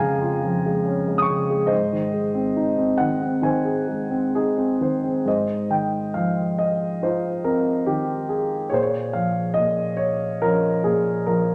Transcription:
grand piano
Already playing: F2 F3 G#3 C#4 G#4 F5 G#5 A#5
0.00 C#3
0.21 F4
0.44 F3
0.66 G#3
0.86 C#4
1.08 G#3
1.18 D#6
1.22 C#6
1.30 C#3
1.50 G#3
1.67 G#2 C5 D#5
1.93 D#3
2.14 G#3
2.34 C4
2.56 D#4
2.78 C4
2.98 D#3 F#5
3.22 C4
3.42 D#3 C5 G#5
3.65 G#4
3.88 G#3
4.11 C4
4.35 D#4 G#4
4.58 C4
4.80 D#3 C5
5.04 C4
5.25 G#2 C5 D#5
5.70 D#3 G5
6.14 F3 F5
6.58 D#5
7.02 D#4 F4 C5
7.44 C4 A#4
7.86 D#3 G4
8.29 G#4
8.70 A#2 G#4 C#5
8.74 C5
8.82 C#5
9.13 F3 F5
9.54 A#2 D#5
9.97 C#5
10.42 F3 C#4 A#4
10.84 A#2 G#4
11.27 F3 A#4

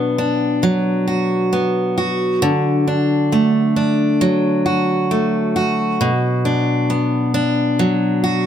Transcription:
steel-string acoustic guitar
Already playing: B2 F#3 B3 D4 F#4
0.18 D4
0.63 F#3
1.07 F#4
1.53 B3
1.98 F#4
2.42 D3
2.88 D4
3.32 A3
3.76 D4
4.21 F#3
4.66 F#4
5.11 A3
5.56 F#4
6.01 B2
6.45 D4
6.90 B3
7.34 D4
7.79 F#3
8.24 F#4

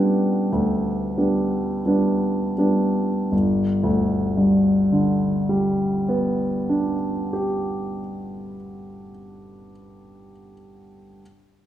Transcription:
grand piano
Already playing: G2 G3 B3 D4 B4 D5 F#5 G5
0.52 D2
1.18 G3 B3 D4
1.86 G3 B3 D4
2.58 G3 B3 D4
3.32 G1
3.83 D2
4.37 G2
4.92 D3
5.49 G3
6.09 B3
6.69 D4
7.33 G4

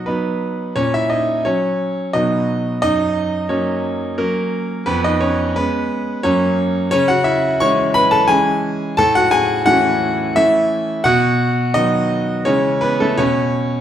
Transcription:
grand piano
0.06 F#3 B3 D#4 B4
0.76 A#2 C#4 C#5
0.94 E4 E5
1.10 D#4 D#5
1.45 F#3 C#4 C#5
2.13 B2 F#3 B3 D#4 D#5
2.82 F#2 D#4 D#5
3.49 F#3 A#3 C#4 C#5
4.18 F#3 A#3 C#4 A#4
4.86 F2 B3 B4
5.04 D#4 D#5
5.21 C#4 C#5
5.56 G#3 B3 C#4 B4
6.23 F#2 F#3 A#3 C#4 C#5
6.91 C#3 C#4 C#5
7.08 F#4 F#5
7.24 E4 E5
7.60 E3 G#3 C#4 C#5 C#6
7.94 B4 B5
8.11 A4 A5
8.28 E3 G#3 C#4 G#4 G#5
8.97 A2 A4 A5
9.15 F#4 F#5
9.31 G#4 G#5
9.66 E3 A3 C#4 F#4 F#5
10.36 E3 A3 C#4 E4 E5
11.04 B2 F#4 F#5
11.74 D#3 F#3 B3 D#4 D#5
12.45 C#3 E3 G#3 C#4 C#5
12.81 B3 B4
13.00 A3 A4
13.18 B2 C#4 C#5

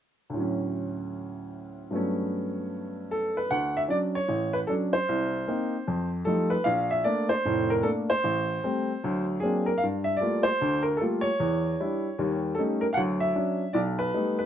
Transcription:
upright piano
0.30 D2 A2
0.36 F#3 C#4
1.90 G2 F#3 A3
1.95 B3 C#4
3.11 A4
3.37 B4
3.51 D2 F#5
3.77 E5
3.88 F#3 C#4 D4 D5
4.15 C#5
4.29 A1
4.53 B4
4.67 F#3 C#4 D4 A4
4.93 C5
5.09 C2
5.48 A#3 C4 D#4
5.88 F2
6.25 F3 G3 A3 D#4 A4
6.50 B4
6.64 A#1 F5
6.91 E5
7.04 A3 A#3 D4 D5
7.29 C5
7.45 F1 A2
7.70 A#4
7.83 A3 A#3 D4 A4
8.10 C5
8.24 A1
8.64 G3 A3 C4
9.04 D2 F#3
9.40 F#3 A#3 C4 D4 G#4
9.66 A#4
9.78 F5
9.83 G2
10.04 E5
10.17 G3 D5
10.21 A3 A#3 F4
10.43 C5
10.61 D2 D3
10.83 A#4
10.97 A3 A4
11.01 G3 A#3 F4
11.21 C#5
11.40 E2
11.80 G3 D4 E4
12.19 D#2 G3
12.55 G3 A3 A4
12.59 C#4 D#4
12.81 A#4
12.93 F5 F#5
12.97 D2 F#3
13.20 E5
13.35 F#3 C#4 D4
13.73 B1 D5
13.99 B4
14.14 G3 A3 B3 D#4
14.39 B4

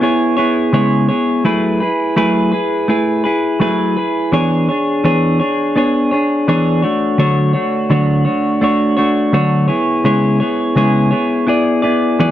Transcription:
clean electric guitar
0.01 B3 E4 G#4 C#5
0.37 B3 E4 G#4 C#5
0.73 C#3 G#3 B3 E4 G#4 C#5
1.09 B3 E4 G#4 C#5
1.44 F#3 A3 E4 G#4 B4
1.80 E4 G#4 B4
2.16 F#3 A3 E4 G#4 B4
2.52 E4 G#4 B4
2.88 A3 E4 G#4 B4
3.24 E4 G#4 B4
3.60 F#3 A3 E4 G#4 B4
3.97 E4 G#4 B4
4.32 E3 B3 D4 G#4 C#5
4.69 D4 G#4 C#5
5.04 E3 B3 D4 G#4 C#5
5.40 D4 G#4 C#5
5.76 B3 D4 G#4 C#5
6.11 D4 G#4 C#5
6.48 E3 B3 D4 G#4 C#5
6.82 A3 D4 F#4 C#5
7.18 D3 F#3 A3 D4 F#4 C#5
7.53 A3 D4 F#4 C#5
7.90 D3 F#3 A3 D4 F#4 C#5
8.25 A3 D4 F#4 C#5
8.61 A3 D4 F#4 C#5
8.97 A3 D4 F#4 C#5
9.33 D3 F#3 A3 D4 F#4 C#5
9.68 B3 E4 G#4 C#5
10.04 C#3 G#3 B3 E4 G#4 C#5
10.40 B3 E4 G#4 C#5
10.75 C#3 G#3 B3 E4 G#4 C#5
11.11 B3 E4 G#4 C#5
11.47 B3 E4 G#4 D5
11.82 B3 E4 G#4 D5
12.19 E3 F#3 B3 E4 G#4 D5

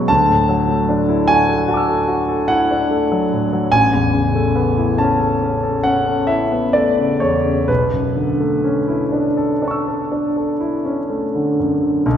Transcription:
grand piano
Already playing: B2 F#3 G#3 C#4 E4 F#4 G#4 C#6
0.08 D2 A5
0.29 A2
0.49 F#3
0.69 A3
0.89 D4
1.09 E4
1.28 F#4 G#5
1.49 A4
1.68 F#4 F#5 A5
1.74 D6 E6
1.88 A4
2.08 F#4
2.29 A4
2.48 E4 F#5
2.71 D4
2.91 A3
3.12 F#3
3.33 A2
3.53 F#3
3.72 A1 G#5
3.93 E2
4.14 C#3
4.35 A3
4.56 B3
4.78 E4
4.98 C#4 A5
5.20 A4
5.42 C#4
5.63 A4
5.84 C#4 F#5
6.06 A4
6.27 E4 E5
6.52 B3
6.73 A3 D5
6.98 C#3
7.20 E2 C#5
7.45 C#3
7.68 B1 B4
7.93 F#2
8.16 D3
8.40 A3
8.64 C#4
8.88 E4
9.12 D4
9.37 A4
9.62 D4 D5 A5
9.68 C#6 E6
9.88 A4
10.12 D4
10.37 A4
10.60 E4
10.85 C#4
11.10 A3
11.35 D3
11.59 F#2
11.83 D3
12.06 B1

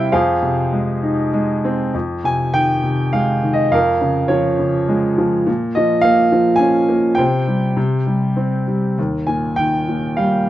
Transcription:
grand piano
Already playing: C3 G3 C4 E4 G4 C5 E5 F5 G5
0.12 F2 G#4 C5 F5
0.43 C3
0.73 G#3
1.02 D#4
1.33 G#3
1.65 C4
1.94 F2
2.24 C3 G#5
2.54 D#3 G5
2.83 C3
3.13 G#3 F5
3.43 D#3
3.53 D#5
3.72 F2 A#4 F5
4.01 C#3
4.28 F3 C#5
4.59 C#3
4.89 G#3
5.18 F3
5.47 A#2
5.75 F3 D#5
6.01 A#3 F5
6.32 F3
6.56 G#5
6.60 C#4
6.89 A#3
7.15 C3 C5 G5
7.48 G3
7.77 C3
8.07 G3
8.37 C4
8.68 G3
8.98 D#2
9.27 A#2 G#5
9.56 D#3 G5
9.89 A#2
10.17 G3 F5

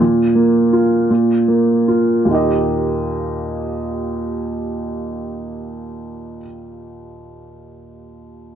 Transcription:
upright piano
0.00 A#2
0.35 A#3
0.73 F4
1.10 A#2
1.48 A#3
1.88 F4
2.25 D#2 A#2 A#3
2.31 D#4 G4 D#5

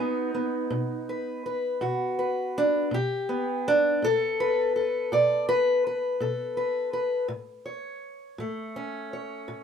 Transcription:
steel-string acoustic guitar
Already playing: B2 B3 D#4 F#4
0.35 B3
0.70 B2
1.09 B4
1.46 B4
1.81 B2 F#4
2.19 B4
2.58 D4
2.91 B2 G4
3.29 B3
3.68 D4
4.02 B2 A4
4.40 B4
4.76 A4
5.12 B2 D5
5.49 B4
5.87 B4
6.20 B2 A4
6.57 B4
6.93 B4
7.28 A2
7.66 C#5
8.38 A2 A3
8.76 C#4
9.13 C#5
9.48 A2

